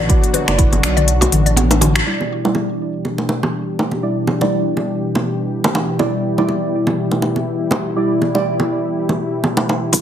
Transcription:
0.00 0.16 A1 medium
0.00 2.02 B2 medium
0.00 2.02 D3 medium
0.00 2.02 F#3 medium
0.00 2.02 D4 medium
0.00 2.02 F#4 medium
0.09 0.45 B3 medium
0.09 0.17 E4 medium
0.09 0.45 F#4 medium
0.09 0.45 D5 medium
0.09 kick loud
0.09 closed hi-hat medium
0.24 closed hi-hat soft
0.34 0.46 B4 medium
0.34 open hi-hat medium
0.34 low bongo medium
0.48 0.77 F#1 medium
0.48 2.04 B3 medium
0.48 2.04 F#4 medium
0.48 2.04 D5 medium
0.48 finger snap medium
0.48 closed hi-hat soft
0.48 high bongo medium
0.58 0.72 E4 loud
0.58 kick loud
0.58 closed hi-hat medium
0.73 closed hi-hat soft
0.73 low bongo medium
0.83 1.27 B1 medium
0.83 finger snap medium
0.83 open hi-hat medium
0.97 1.07 D5 loud
0.97 closed hi-hat soft
0.97 mid tom medium
1.08 closed hi-hat medium
1.21 1.32 F#4 loud
1.21 closed hi-hat soft
1.21 high bongo medium
1.21 low bongo medium
1.32 2.01 A1 medium
1.32 open hi-hat medium
1.32 mid tom medium
1.46 1.56 D5 medium
1.46 closed hi-hat soft
1.56 1.70 B3 medium
1.56 closed hi-hat medium
1.56 low bongo medium
1.71 1.81 D4 medium
1.71 closed hi-hat soft
1.71 high bongo loud
1.81 1.94 F#4 medium
1.81 open hi-hat medium
1.81 mid tom medium
1.81 high bongo loud
1.96 2.01 F#4 medium
1.96 finger snap medium
1.96 closed hi-hat soft
2.06 9.89 B2 medium
2.06 9.89 E3 medium
2.06 9.89 G3 medium
2.06 2.42 G3 medium
2.06 5.96 D4 medium
2.06 2.42 E4 medium
2.06 9.89 G4 medium
2.06 2.42 D5 medium
2.21 low bongo medium
2.45 4.00 G3 medium
2.45 4.00 E4 medium
2.45 4.00 D5 medium
2.45 high bongo medium
2.55 low bongo medium
3.05 low bongo medium
3.18 high bongo medium
3.29 high bongo medium
3.43 low bongo medium
3.79 high bongo medium
3.91 low bongo medium
4.03 4.38 G3 medium
4.03 4.38 E4 medium
4.03 4.38 D5 medium
4.27 low bongo medium
4.41 5.97 G3 medium
4.41 5.97 E4 medium
4.41 5.97 D5 medium
4.41 high bongo medium
4.77 low bongo medium
5.15 high bongo medium
5.15 low bongo medium
5.64 high bongo loud
5.64 low bongo medium
5.75 high bongo loud
5.99 6.35 G3 medium
5.99 6.35 E4 medium
5.99 9.89 E4 medium
5.99 6.35 D5 medium
5.99 low bongo medium
6.38 7.94 G3 medium
6.38 7.94 E4 medium
6.38 7.94 D5 medium
6.38 high bongo medium
6.49 low bongo medium
6.87 low bongo medium
7.11 high bongo medium
7.22 high bongo medium
7.36 low bongo medium
7.71 high bongo loud
7.71 low bongo medium
7.96 8.32 G3 medium
7.96 8.32 E4 medium
7.96 8.32 D5 medium
8.22 low bongo medium
8.35 9.91 G3 medium
8.35 9.91 E4 medium
8.35 9.91 D5 medium
8.35 high bongo medium
8.60 low bongo medium
9.09 high bongo medium
9.09 low bongo medium
9.44 low bongo medium
9.57 high bongo loud
9.69 high bongo medium
9.93 10.01 D3 medium
9.93 10.01 E3 medium
9.93 10.01 G3 medium
9.93 10.01 B3 medium
9.93 10.00 E4 medium
9.93 10.01 E4 medium
9.93 10.01 D5 medium
9.93 kick loud
9.93 closed hi-hat medium
9.93 low bongo medium
9.93 shaker medium

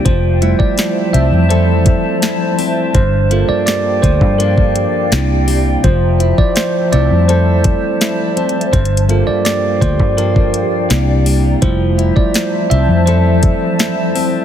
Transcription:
0.00 0.13 C3 medium
0.00 2.91 C5 medium
0.00 2.91 E5 medium
0.05 0.53 F1 loud
0.05 2.92 F3 medium
0.05 2.98 F3 medium
0.05 0.61 C5 medium
0.05 2.92 A5 medium
0.05 kick loud
0.05 closed hi-hat medium
0.42 2.91 G3 medium
0.42 2.91 A3 medium
0.42 1.49 E4 medium
0.42 2.91 E4 medium
0.42 closed hi-hat medium
0.59 1.10 D5 medium
0.59 muted fingered electric bass stroke soft
0.59 kick medium
0.78 snare loud
0.78 closed hi-hat medium
1.13 1.30 C2 medium
1.13 1.49 C4 medium
1.13 1.51 E5 loud
1.13 closed hi-hat medium
1.32 1.95 F2 loud
1.49 2.57 C4 medium
1.49 2.21 E4 medium
1.49 3.02 A4 medium
1.49 2.18 C5 medium
1.49 closed hi-hat medium
1.86 kick medium
1.86 closed hi-hat medium
2.22 3.02 E4 medium
2.22 snare loud
2.22 closed hi-hat medium
2.59 3.02 C4 medium
2.59 open hi-hat medium
2.94 3.42 G1 loud
2.94 5.19 G2 medium
2.94 5.81 G4 medium
2.94 3.50 C5 loud
2.94 5.09 D5 medium
2.94 5.09 F5 medium
2.94 5.09 G5 loud
2.94 kick loud
2.94 closed hi-hat medium
3.31 4.39 A#3 medium
3.31 5.08 A#3 medium
3.31 5.08 F4 medium
3.31 5.08 A4 medium
3.31 closed hi-hat medium
3.49 3.65 D5 loud
3.49 muted fingered electric bass stroke medium
3.66 4.04 D5 loud
3.66 snare loud
3.66 closed hi-hat medium
4.02 4.21 D2 medium
4.02 4.38 F3 medium
4.02 4.40 C5 loud
4.02 kick medium
4.02 closed hi-hat medium
4.21 4.85 G2 medium
4.21 kick medium
4.38 5.19 F3 medium
4.38 5.19 A#3 medium
4.38 5.20 D4 medium
4.38 5.07 A#4 medium
4.38 closed hi-hat medium
4.58 kick medium
4.76 closed hi-hat medium
5.12 5.75 C2 loud
5.12 5.91 C3 medium
5.12 5.60 A#3 medium
5.12 5.60 D4 medium
5.12 5.60 E4 medium
5.12 8.69 C5 medium
5.12 8.70 E5 medium
5.12 snare loud
5.12 closed hi-hat medium
5.48 5.83 G3 medium
5.48 open hi-hat medium
5.84 6.32 F1 loud
5.84 8.70 F3 medium
5.84 8.76 F3 medium
5.84 6.34 C5 loud
5.84 8.70 A5 medium
5.84 kick loud
5.84 closed hi-hat medium
6.20 7.28 E4 medium
6.20 closed hi-hat medium
6.38 6.55 D5 loud
6.38 muted fingered electric bass stroke soft
6.38 kick medium
6.56 6.93 C5 loud
6.56 snare loud
6.56 closed hi-hat medium
6.92 7.09 C2 medium
6.92 8.69 G3 medium
6.92 8.70 A3 medium
6.92 7.28 C4 medium
6.92 8.70 E4 medium
6.92 7.26 D5 loud
6.92 closed hi-hat medium
7.11 7.74 F2 medium
7.28 8.36 C4 medium
7.28 8.00 E4 medium
7.28 8.81 A4 medium
7.28 8.33 C5 medium
7.28 closed hi-hat medium
7.64 kick loud
7.64 closed hi-hat medium
8.01 8.80 E4 medium
8.01 snare loud
8.01 closed hi-hat medium
8.37 8.80 C4 medium
8.37 closed hi-hat soft
8.37 open hi-hat medium
8.49 closed hi-hat medium
8.61 closed hi-hat medium
8.73 9.21 G1 loud
8.73 10.97 G2 medium
8.73 11.59 G4 medium
8.73 9.29 C5 loud
8.73 10.88 D5 medium
8.73 10.88 F5 medium
8.73 10.88 G5 loud
8.73 kick loud
8.73 closed hi-hat medium
8.85 closed hi-hat medium
8.97 closed hi-hat medium
9.09 10.17 A#3 medium
9.09 10.86 A#3 medium
9.09 10.87 F4 medium
9.09 10.86 A4 medium
9.09 closed hi-hat medium
9.27 9.44 D5 loud
9.27 muted fingered electric bass stroke soft
9.45 9.82 D5 loud
9.45 snare loud
9.45 closed hi-hat medium
9.81 10.00 D2 medium
9.81 10.17 F3 medium
9.81 10.15 C5 medium
9.81 kick medium
9.81 closed hi-hat medium
10.00 10.63 G2 medium
10.00 kick medium
10.17 10.97 F3 medium
10.17 10.97 A#3 medium
10.17 10.98 D4 medium
10.17 10.86 A#4 medium
10.17 closed hi-hat medium
10.36 kick medium
10.54 closed hi-hat medium
10.90 11.54 C2 loud
10.90 11.69 C3 medium
10.90 11.38 A#3 medium
10.90 11.38 D4 medium
10.90 11.39 E4 medium
10.90 14.45 C5 medium
10.90 14.45 E5 medium
10.90 snare loud
10.90 closed hi-hat medium
11.26 11.62 G3 medium
11.26 open hi-hat medium
11.62 12.10 F1 loud
11.62 14.45 F3 medium
11.62 12.67 G3 medium
11.62 12.67 A3 soft
11.62 12.67 E4 medium
11.62 12.12 C5 medium
11.62 14.45 A5 loud
11.62 kick loud
11.62 closed hi-hat medium
11.98 13.06 E4 medium
11.98 closed hi-hat medium
12.16 12.72 D5 medium
12.16 muted fingered electric bass stroke medium
12.16 kick medium
12.34 snare loud
12.34 closed hi-hat medium
12.70 12.87 C2 medium
12.70 13.06 C4 medium
12.70 13.04 E5 loud
12.70 closed hi-hat medium
12.89 13.52 F2 loud
13.06 14.14 C4 medium
13.06 13.78 E4 medium
13.06 14.45 A4 medium
13.06 13.75 C5 medium
13.06 closed hi-hat medium
13.43 kick loud
13.43 closed hi-hat medium
13.79 14.45 E4 medium
13.79 snare loud
13.79 closed hi-hat medium
14.15 14.45 C4 medium
14.15 open hi-hat medium

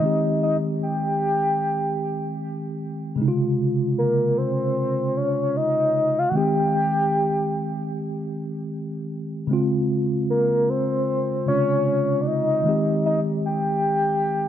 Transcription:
0.00 3.13 D#3 medium
0.00 3.14 G#3 medium
0.00 3.15 C4 medium
0.00 0.42 D#5 loud
0.06 3.16 G4 medium
0.43 0.57 D#5 medium
0.83 2.36 G5 loud
3.16 6.31 C3 medium
3.16 6.29 C#3 medium
3.16 6.30 G#3 medium
3.22 3.27 D#4 medium
3.28 6.35 F4 medium
3.98 4.39 A#4 medium
4.38 5.19 C5 medium
5.17 5.58 C#5 medium
5.57 6.20 D#5 loud
6.19 6.30 F5 medium
6.29 9.45 D#3 medium
6.29 6.37 F#5 medium
6.33 9.46 G#3 medium
6.33 9.47 C4 medium
6.33 9.48 G4 medium
6.33 7.93 G5 loud
9.47 11.42 C#3 medium
9.47 11.43 G#3 medium
9.47 11.44 C4 medium
9.53 11.45 F4 medium
10.30 10.71 A#4 medium
10.69 11.48 C5 medium
11.46 12.66 C3 soft
11.46 12.65 C#3 soft
11.46 12.64 G#3 soft
11.46 12.67 F4 medium
11.46 12.23 C#5 loud
12.21 12.28 D5 medium
12.27 13.05 D#5 loud
12.63 14.48 D#3 medium
12.63 14.48 G#3 medium
12.67 14.48 C4 medium
12.67 14.48 G4 medium
13.06 13.20 D#5 medium
13.46 14.48 G5 loud

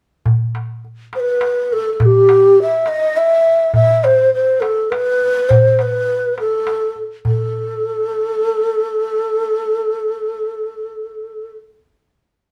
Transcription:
0.26 darbuka dum medium
0.55 darbuka tek soft
0.85 darbuka ka soft
1.13 1.21 C5 medium
1.13 darbuka tek medium
1.20 1.74 B4 medium
1.41 darbuka tek medium
1.71 1.93 A4 medium
1.71 darbuka ka soft
1.93 2.02 A4 medium
2.00 2.06 A4 medium
2.00 darbuka dum medium
2.05 2.60 G4 medium
2.29 darbuka tek medium
2.57 darbuka ka soft
2.62 2.89 E5 medium
2.86 3.18 D#5 medium
2.86 darbuka tek medium
3.17 3.74 E5 medium
3.46 darbuka ka soft
3.74 4.06 E5 medium
3.74 darbuka dum medium
4.04 4.33 C5 medium
4.04 darbuka tek medium
4.33 4.62 C5 medium
4.33 darbuka ka soft
4.61 4.92 A4 medium
4.61 darbuka tek medium
4.90 5.50 B4 medium
4.90 darbuka tek medium
5.21 darbuka ka soft
5.49 5.83 C5 medium
5.49 darbuka dum medium
5.79 6.39 B4 medium
5.79 darbuka tek medium
5.93 darbuka ka soft
6.09 darbuka ka soft
6.38 7.00 A4 medium
6.38 darbuka tek medium
6.67 darbuka tek medium
6.96 darbuka ka soft
7.25 11.52 A4 medium
7.25 darbuka dum medium

